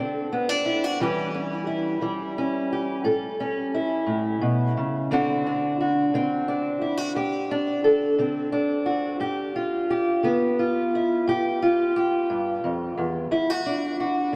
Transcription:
Already playing: D3 C4 D4 A4
0.32 B3
0.49 D4
0.66 E4
0.84 F#4
1.00 A2 E3 G3 C#4 G4
1.34 C#4
1.67 E4
2.01 E3 G3
2.38 C#4
2.73 G4
3.04 A2 A4
3.40 C#4
3.74 E4
4.06 A2
4.41 B2
4.77 C#3
5.11 D2 D3 C4 D4 F#4
5.46 D4
5.80 F#4
6.14 D3 C4
6.48 D4
6.82 E4
6.97 F#4
7.15 D2 G4
7.51 D4
7.84 A4
8.19 D3 C4
8.52 D4
8.86 F#4
9.20 G2 G4
9.56 F4
9.90 G4
10.23 D3 B3
10.59 F4
10.95 E4
11.27 G2 G4
11.62 F4
11.96 G4
12.30 G2
12.64 F2
12.97 E2
13.31 D2 E4
13.50 F#4
13.66 D4
14.00 F#4

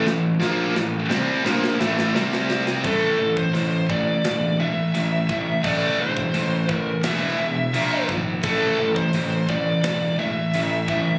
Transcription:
0.05 A1 A2 E3, snare
0.40 A#1 A#2 F3 A#3, snare
0.75 A1 A2 E3, snare
1.09 C2 C3 G3 C4, snare
1.44 A#1 A#2 F3 A#3, snare
1.64 snare
1.79 A1 A2 E3 A3, snare
1.99 snare
2.14 C2 C3 G3 C4, snare
2.33 snare
2.50 snare
2.67 snare
2.84 A1 A2 E3 A3 A4, kick, open hi-hat
3.19 A1 A2 E3
3.37 C5, kick
3.54 A1 A2 E3, open hi-hat
3.89 A1 A2 E3 D5, kick
4.24 E1 A2 E3, snare, open hi-hat
4.60 A2 E3 E5
4.94 A1 A2 E3, open hi-hat
5.29 A1 A2 E3, kick
5.63 A1 A2 E3 A3 D5, kick, open hi-hat
5.99 E1 A2 E3 C5
6.17 kick
6.34 A1 A2 E3, open hi-hat
6.69 A1 A2 E3, kick
6.74 A#4
7.03 E1 E2 B2 E3 E5, snare, open hi-hat
7.39 E1 E2 B2
7.73 A#1 A#2 F3 A#3, open hi-hat
8.09 G#1 A#2 F3, kick
8.43 A1 A2 E3 A3 A4, kick, open hi-hat
8.79 A1 A2 E3
8.96 C5, kick
9.13 A1 A2 E3, open hi-hat
9.49 A1 A2 E3 D5, kick
9.84 E1 A2 E3, snare, open hi-hat
10.19 A2 E3 E5
10.54 A1 A2 E3, open hi-hat
10.88 A1 A2 E3, kick

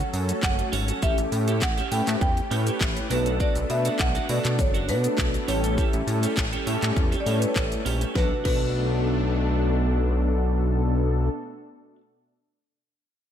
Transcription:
Already playing: F#3 C#4 A4 F#5
0.01 muted clean electric guitar stroke
0.13 F#2, open hi-hat, shaker
0.29 A3 C#4 F#4 A4 C#5, muted clean electric guitar stroke, closed hi-hat, shaker
0.43 F#1 F#5, muted clean electric guitar stroke, kick, clap, shaker
0.59 muted clean electric guitar stroke, closed hi-hat, shaker
0.72 G#1 C#4 F#4 A4, open hi-hat, shaker
0.88 C#4 F#4 A4, closed hi-hat, shaker
1.02 A1 A3 C#4 E4 G4 A4 E5, kick, shaker
1.18 A1, muted clean electric guitar stroke, closed hi-hat, shaker
1.32 A2, muted clean electric guitar stroke, open hi-hat, shaker
1.48 C#4 G4 A4, closed hi-hat, shaker
1.61 A1 F#5, muted clean electric guitar stroke, kick, clap, shaker
1.78 C#4 G4 A4, closed hi-hat, shaker
1.91 A2 A3 C#4 E4 G4 A4 B4 G5, open hi-hat, shaker
2.07 A2, muted clean electric guitar stroke, clap, closed hi-hat, shaker
2.21 E2 G5, muted clean electric guitar stroke, kick, shaker
2.37 muted clean electric guitar stroke, closed hi-hat, shaker
2.51 A2 A3 C#4 E4 G4 A4 B4, open hi-hat, shaker
2.67 C#4 G4 A4, closed hi-hat, shaker
2.81 A1, muted clean electric guitar stroke, kick, clap, shaker
2.96 muted clean electric guitar stroke, closed hi-hat, shaker
3.10 B1 A3 B3 D4 F#4 A4 B4, open hi-hat, shaker
3.26 D4 F#4 A4, closed hi-hat, shaker
3.40 D4 F#4 A4 D5, kick, shaker
3.56 B1, muted clean electric guitar stroke, closed hi-hat, shaker
3.70 B2 E5, muted clean electric guitar stroke, open hi-hat, shaker
3.85 D4 F#4 A4, closed hi-hat, shaker
3.99 B1 F#5, kick, clap, shaker
4.15 D4 F#4 A4, closed hi-hat, shaker
4.29 B2 A3 B3 D4 F#4 A4 D5, open hi-hat, shaker
4.45 B2, muted clean electric guitar stroke, clap, closed hi-hat, shaker
4.59 F#1 C#5, muted clean electric guitar stroke, kick, shaker
4.74 D4 F#4 A4, closed hi-hat, shaker
4.88 B2 D4 F#4 A4 B4, open hi-hat, shaker
5.04 A3 B3 D4 F#4 A4, muted clean electric guitar stroke, closed hi-hat, shaker
5.18 B1, kick, clap, shaker
5.34 muted clean electric guitar stroke, closed hi-hat, shaker
5.48 A1 G3 A3 C#4 E4 G4 A4 C#5, open hi-hat, shaker
5.63 C#4 G4 A4, closed hi-hat, shaker
5.77 C#4 G4 A4, kick, shaker
5.93 A1, muted clean electric guitar stroke, closed hi-hat, shaker
6.07 A2, muted clean electric guitar stroke, open hi-hat, shaker
6.23 C#4 G4 A4, closed hi-hat, shaker
6.37 A1, kick, clap, shaker
6.52 C#4 G4 A4, closed hi-hat, shaker
6.66 A2 A3 C#4 E4 G4 A4, open hi-hat, shaker
6.82 A2, clap, closed hi-hat, shaker
6.96 E2, muted clean electric guitar stroke, kick, shaker
7.12 C#4 G4 A4, closed hi-hat, shaker
7.20 D5
7.26 A2 A3 C#4 E4 G4 A4 C#5, open hi-hat, shaker
7.39 B4, muted clean electric guitar stroke, closed hi-hat, shaker
7.48 C#5
7.56 A1, kick, clap, shaker
7.72 muted clean electric guitar stroke, closed hi-hat, shaker
7.85 A#1 C#4 G4 A4, open hi-hat, shaker
8.01 C#4 G4 A4, closed hi-hat, shaker
8.14 B1 B2 A3 B3 D4 F#4 A4 B4, kick, snare
8.19 A4
8.44 B1 B3 D4 F#4 A4 B4, kick, crash
8.49 A4

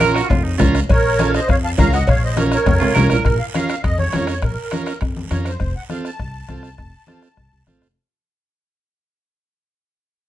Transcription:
Already playing: A#1 F4 A#4
0.00 C#4 F4 A#4, bombo rim, cowbell, high conga, short guiro
0.14 F#4, bombo rim, short guiro
0.29 F2 F4, bombo low, bombo rim, cowbell, high conga, low conga, long guiro
0.43 D#4
0.58 C#2 C#4 F4 A#4, bombo low, bombo rim, cowbell, high conga, low conga, low timbale, short guiro
0.75 bombo rim, short guiro
0.89 A#1 A#4 C#5, bombo low, bombo rim, cowbell, high conga, long guiro
1.19 C#4 F4 A4, bombo rim, cowbell, high conga, short guiro
1.34 C5 D#5, bombo rim, short guiro
1.48 F2 C#5 F5, bombo low, bombo rim, cowbell, high conga, long guiro
1.64 F5 A5
1.78 C#2 C#4 F4 A#4 F5 A#5, bombo low, bombo rim, cowbell, high conga, low timbale, short guiro
1.93 D#5 F#5, bombo rim, short guiro
2.07 A#1 C#5 F5, bombo low, bombo rim, cowbell, high conga, long guiro
2.23 C5 D#5
2.37 C#4 F4 A#4 C#5, bombo rim, cowbell, high conga, short guiro
2.52 A#4 C#5, bombo rim, short guiro
2.66 F2, bombo low, bombo rim, cowbell, high conga, low conga, high timbale, long guiro
2.80 C#2 F4, high timbale
2.94 C2 C#4 F4 A#4 C5, bombo rim, cowbell, high conga, low conga, short guiro
3.10 A#1 A#4, bombo rim, low timbale, short guiro
3.25 A#1, bombo low, bombo rim, high timbale, long guiro
3.39 F5
3.54 C#4 F4 A#4 F5, bombo rim, high conga, high timbale, short guiro
3.69 bombo rim, high timbale, short guiro
3.84 F2 D#5, bombo low, bombo rim, high timbale, long guiro
3.98 C#5, high conga
4.13 F2 C#4 F4 A#4, bombo rim, high conga, high timbale, low timbale, short guiro
4.27 C#5, bombo rim, high timbale, short guiro
4.42 A#1 A#4, bombo low, bombo rim, high timbale, long guiro
4.71 C#4 F4 A#4, bombo rim, high conga, high timbale, short guiro
4.86 bombo rim, high timbale, short guiro
5.01 F2, bombo low, bombo rim, high timbale, long guiro
5.17 high conga
5.30 F2 C#4 F4 A#4 C#5, bombo rim, high conga, high timbale, short guiro
5.45 C5, bombo rim, high timbale, short guiro
5.60 F1, bombo low, bombo rim, long guiro
5.76 F#5
5.89 C4 F4 A4 F5, bombo rim, high conga, short guiro
6.05 A5, bombo rim, short guiro
6.20 C2, bombo low, bombo rim, long guiro
6.48 C2 C4 F4 A4, bombo low, bombo rim, high conga, short guiro
6.63 bombo rim, short guiro
6.78 F1, bombo low, bombo rim, long guiro
7.07 C4 F4 A4, bombo rim, high conga, short guiro
7.22 bombo rim, short guiro
7.37 C2, bombo low, bombo rim, long guiro
7.52 C2
7.67 A1 C4 F4 A4, bombo rim, high conga, short guiro
7.81 F1, bombo rim, short guiro

